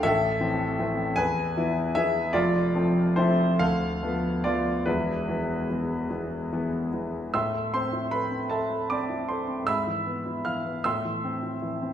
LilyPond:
<<
  \new Staff \with { instrumentName = "Grand piano" } { \time 6/8 \key a \minor \tempo 4. = 51 <a' e''>4. <b' gis''>4 <gis' e''>8 | <f' d''>4 <e' c''>8 <a' f''>4 <f' d''>8 | <e' b'>4. r4. | <e'' c''' e'''>8 <c'' c'''>8 <b' b''>8 <a' e'' a''>8 <d'' d'''>8 <c'' c'''>8 |
<e'' b'' e'''>4 <f'' f'''>8 <e'' c''' e'''>4. | }
  \new Staff \with { instrumentName = "Grand piano" } { \time 6/8 \key a \minor <a,, a,>8 <e a c'>8 <e a c'>8 e,8 <e b e'>8 <e b e'>8 | <f,, f,>8 <f a c'>8 <f a c'>8 d,8 <f a b>8 <f a b>8 | <e,, e,>8 <e gis b>8 <e gis b>8 <e gis b>8 <e gis b>8 <e gis b>8 | a,16 a16 c'16 e'16 a16 c'8 a16 c'16 e'16 a16 c'16 |
gis,16 e16 b16 e'16 e16 b16 a,16 e16 c'16 e'16 e16 c'16 | }
>>